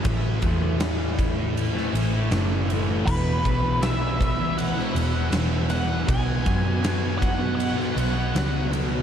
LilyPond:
<<
  \new Staff \with { instrumentName = "Lead electric guitar" } { \time 4/4 \key e \major \tempo 4 = 80 r1 | b'4 e''4 fis''4 r8 fis''8 | gis''4. fis''8 fis''4. r8 | }
  \new Staff \with { instrumentName = "Distorted electric guitar" } { \clef bass \time 4/4 \key e \major <a, e a>8 <a, e a>16 <e a>16 <a, e a>4~ <a, e a>16 <e a>16 <a, e a>8 <a, e a>8 <a, e a>16 <e a>16 | <e, b, e>8 <e, b, e>16 <b, e>16 <e, b, e>4~ <e, b, e>16 <b, e>16 <e, b, e>8 <e, b, e>8 <e, b, e>16 <b, e>16 | <b, fis b>8 <b, fis b>16 <fis b>16 <b, fis b>4~ <b, fis b>16 <fis b>16 <b, fis b>8 <b, fis b>8 <b, fis b>16 <fis b>16 | }
  \new Staff \with { instrumentName = "Picked electric bass" } { \clef bass \time 4/4 \key e \major a,,8 e,2 a,,8 fis,,4 | e,,8 b,,2 e,,8 e,,4 | b,,8 fis,2 b,,8 cis,4 | }
  \new DrumStaff \with { instrumentName = "Drums" } \drummode { \time 4/4 <bd cymr>8 <bd cymr>8 <cymr sn>8 <bd cymr>8 cymr16 sn16 cymr8 <cymr sn>8 cymr8 | <cymc bd>8 <bd cymr>8 <cymr sn>8 <bd cymr>8 cymr16 sn16 cymr8 <cymr sn>8 cymr8 | <bd cymr>8 <bd cymr>8 <cymr sn>8 <bd cymr>8 cymr16 sn16 cymr8 <cymr sn>8 cymr8 | }
>>